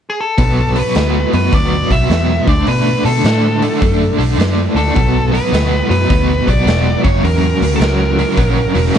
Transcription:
0.10 G#4
0.20 A4
0.38 B1 B2 F#3 B3, kick, open hi-hat
0.75 B2 F#3 B3, open hi-hat
0.79 B4
0.94 D2 B2 F#3 B3, snare, open hi-hat
1.33 F#2 B2 F#3 B3 B4, open hi-hat
1.52 D2 B2 F#3 B3 D5, kick, open hi-hat
1.90 B1 B2 F#3 B3 E5, kick, open hi-hat
2.10 E2 B2 F#3 B3, snare, open hi-hat
2.47 D2 D3 A3 D4 D5, kick, open hi-hat
2.67 B2 D3 A3 D4 B4, open hi-hat
3.04 B2 D3 A3 D4 A4, open hi-hat
3.24 A2 D3 A3 D4, snare, open hi-hat
3.62 D3 A3 D4, open hi-hat
3.81 F#2 D3 A3 D4, kick, open hi-hat
4.18 B1 D3 A3 D4, open hi-hat
4.38 F#2 D3 A3 D4, snare, open hi-hat
4.75 D2 D3 A3 D4 A4, open hi-hat
4.95 B1 B2 F#3 B3, kick, open hi-hat
5.32 B2 F#3 B3 B4, open hi-hat
5.53 D2 B2 F#3 B3, snare, open hi-hat
5.89 F#2 B2 F#3 B3 B4, open hi-hat
6.09 D2 B2 F#3 B3, kick, open hi-hat
6.47 B1 B2 F#3 B3 D5, kick, open hi-hat
6.66 E1 B2 F#3 B3, snare, open hi-hat
7.03 F#1 F#2 C#3 F#3 C#5, kick, open hi-hat
7.23 E2 F#2 C#3 F#3 A#4, open hi-hat
7.61 D2 F#2 C#3 F#3, open hi-hat
7.76 A4 A#4
7.80 C#2 F#2 C#3 F#3, snare, open hi-hat
8.18 F#2 C#3 F#3, open hi-hat
8.37 A#1 F#2 C#3 F#3, kick, open hi-hat
8.75 E1 F#2 C#3 F#3, open hi-hat
8.94 A#1 F#2 C#3 F#3, open hi-hat

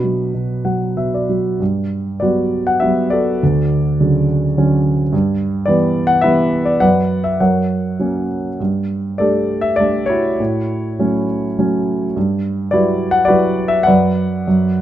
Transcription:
Already playing: B2 D4 F#4 B4
0.04 F#3
0.34 B2
0.65 F#3 F#5
0.97 B2 E5
1.14 D5
1.29 F#3
1.60 G2
2.20 F#3 G3 B3 F#4 B4 D5
2.67 F#5
2.80 F#3 G3 B3 E5
3.10 F#4 A4 D5
3.43 D2
4.00 C#3 D3 F#3
4.57 D3 F#3 C#4
5.13 G2
5.66 E3 G3 B3 B4 D5
6.07 F#5
6.21 E3 G3 B3 B4 E5
6.65 D5
6.80 F#2 B4 D5 F#5
7.24 E5
7.40 F#2 A#4 C#5 F#5
7.99 F#3 A#3 C#4
8.60 G2
9.18 G3 A3 D4 G4 A4 D5
9.61 E5
9.76 G3 A3 D4 D5
10.06 E4 F#4 C#5
10.40 A2
10.99 F#3 A3 C#4
11.59 F#3 A3 C#4
12.16 G2
12.71 F#3 G3 E4 F#4 B4 D5
13.11 F#5
13.25 F#4 B4 D5
13.30 F#3 G3 E4
13.68 E5
13.83 B4 F#5
13.87 F#2 D5
14.48 F#2

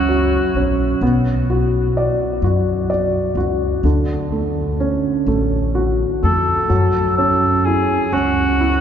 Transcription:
Already playing: C#2 F#3 C#4 F#4
0.09 F#3
0.55 A#1 C#4
1.01 B1 B3
1.50 F#4
1.97 D5
2.42 F#2 F#4
2.90 D5
3.35 C#2 F#4
3.83 D2 D3
4.32 A3
4.80 C#4
5.26 A1 A3
5.75 F#4
6.23 F2 A3 A4
6.69 F#2 F#3
7.17 C#4 A4
7.65 E4 G#4
8.12 C#2 C#4 F#4
8.60 E4

